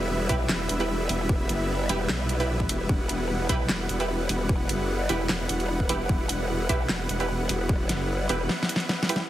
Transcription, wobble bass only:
0.00 0.28 E1 loud
0.29 0.48 B1 loud
0.49 0.68 E1 medium
0.69 1.08 E1 loud
1.09 1.48 E1 loud
1.49 1.88 F#1 loud
1.89 2.08 E1 loud
2.09 2.50 B1 loud
2.50 2.68 A#1 loud
2.69 2.88 E1 loud
2.89 3.48 E1 loud
3.49 3.68 B1 loud
3.69 3.88 E1 loud
3.89 4.28 E1 loud
4.29 4.68 E1 loud
4.69 5.08 F#1 loud
5.09 5.28 E1 loud
5.29 5.48 E1 loud
5.49 5.88 E1 loud
5.89 6.08 E1 loud
6.09 6.68 E1 loud
6.69 6.88 B1 loud
6.89 7.08 E1 loud
7.09 7.48 E1 loud
7.49 7.88 E1 loud
7.89 8.28 F#1 loud
8.29 8.48 E1 loud

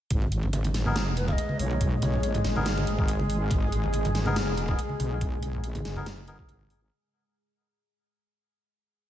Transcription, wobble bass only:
0.11 1.37 G#1 loud
1.59 2.18 B1 loud
2.18 2.43 A#1 loud
2.45 2.86 G#1 loud
2.87 3.49 G#1 medium
3.51 4.77 G#1 loud
5.00 5.59 B1 loud
5.59 5.83 A#1 loud
5.85 6.47 F#1 loud
6.49 6.90 G#1 loud

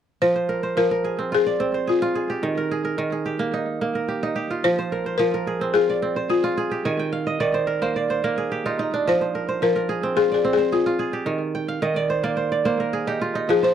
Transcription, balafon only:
0.22 0.78 C5 medium
0.78 1.34 A#4 medium
1.35 1.90 G#4 medium
1.89 2.27 F4 medium
4.64 5.21 C5 medium
5.18 5.75 A#4 medium
5.74 6.31 G#4 medium
6.30 6.69 F4 medium
9.09 9.65 C5 medium
9.63 10.19 A#4 medium
10.17 10.33 G#4 medium
10.34 10.52 G#4 medium
10.53 10.73 G#4 medium
10.73 11.11 F4 medium
13.50 13.63 G#4 medium
13.64 13.74 C5 medium

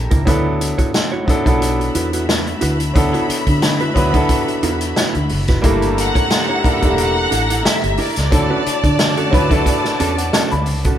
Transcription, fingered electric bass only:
0.12 0.25 C#2 medium
0.27 0.72 D2 medium
1.28 muted fingered electric bass stroke soft
1.46 1.88 B1 medium
1.95 2.53 E2 medium
2.62 2.91 D2 medium
2.96 3.11 D2 medium
3.29 muted fingered electric bass stroke soft
3.47 3.90 D3 medium
3.96 4.25 D2 medium
4.63 4.92 E2 medium
5.15 5.28 D2 medium
5.31 5.60 F#1 medium
5.64 6.09 G1 medium
6.64 muted fingered electric bass stroke soft
6.82 7.25 E1 medium
7.32 7.61 A1 medium
7.84 7.97 G1 medium
8.17 8.31 C#2 medium
8.32 8.48 D2 loud
8.67 muted fingered electric bass stroke soft
8.84 9.34 D3 medium
9.33 9.62 D2 medium
10.00 10.29 E2 medium
10.52 10.67 D2 medium
10.67 10.96 C#2 medium

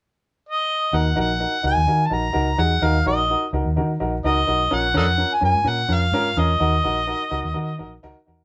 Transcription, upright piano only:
0.93 1.06 D#4 medium
0.93 1.06 F#4 medium
0.93 1.07 A#4 medium
1.16 1.29 D#4 medium
1.16 1.30 F#4 medium
1.16 1.30 A#4 medium
1.40 1.53 D#4 medium
1.40 1.54 F#4 medium
1.40 1.54 A#4 medium
1.63 1.77 D#4 medium
1.63 1.77 F#4 medium
1.63 1.77 A#4 medium
1.87 2.01 D#4 medium
1.87 2.01 F#4 medium
1.87 2.01 A#4 medium
2.10 2.24 D#4 medium
2.10 2.24 F#4 medium
2.10 2.24 A#4 medium
2.33 2.47 D#4 medium
2.33 2.47 F#4 medium
2.33 2.48 A#4 loud
2.57 2.71 D#4 medium
2.57 2.72 F#4 medium
2.57 2.72 G#4 medium
2.82 2.95 D#4 medium
2.82 2.96 F#4 medium
2.82 2.96 A#4 loud
3.06 3.19 D#4 medium
3.06 3.19 F#4 medium
3.06 3.19 A#4 medium
3.30 3.43 D#4 medium
3.30 3.43 F#4 medium
3.30 3.43 A#4 medium
3.53 3.66 D#4 medium
3.53 3.66 F#4 medium
3.53 3.67 A#4 medium
3.76 3.90 D#4 medium
3.76 3.90 F#4 medium
3.76 3.90 A#4 medium
4.00 4.13 D#4 medium
4.00 4.13 F#4 medium
4.00 4.14 A#4 medium
4.24 4.37 D#4 medium
4.24 4.38 F#4 medium
4.24 4.38 A#4 loud
4.47 4.61 D#4 medium
4.47 4.61 F#4 medium
4.47 4.61 A#4 medium
4.71 4.84 C#4 medium
4.71 4.84 F4 medium
4.71 4.84 A#4 medium
4.94 5.08 C#4 medium
4.94 5.08 F4 medium
4.94 5.08 A#4 medium
5.18 5.31 C#4 medium
5.18 5.32 F4 medium
5.18 5.32 A#4 medium
5.41 5.55 C#4 medium
5.41 5.55 F4 medium
5.41 5.56 A#4 medium
5.64 5.78 C#4 medium
5.64 5.79 F4 medium
5.64 5.79 A#4 medium
5.88 6.02 C#4 medium
5.88 6.02 F4 medium
5.88 6.03 A#4 medium
6.13 6.26 C#4 medium
6.13 6.27 F4 medium
6.13 6.27 A#4 loud
6.37 6.50 C#4 medium
6.37 6.50 F4 medium
6.37 6.51 A#4 medium
6.60 6.73 D#4 medium
6.60 6.73 F#4 medium
6.60 6.74 A#4 loud
6.84 6.97 D#4 medium
6.84 6.97 F#4 medium
6.84 6.98 A#4 medium
7.07 7.21 D#4 medium
7.07 7.21 F#4 medium
7.07 7.21 A#4 medium
7.30 7.44 D#4 medium
7.30 7.44 F#4 medium
7.30 7.44 A#4 medium
7.54 7.68 D#4 medium
7.54 7.68 F#4 medium
7.54 7.68 A#4 medium
7.78 7.92 D#4 medium
7.78 7.92 F#4 medium
7.78 7.92 A#4 medium
8.03 8.16 D#4 loud
8.03 8.16 F#4 loud
8.03 8.16 A#4 loud
8.26 8.39 D#4 medium
8.26 8.40 F#4 medium
8.26 8.40 A#4 medium

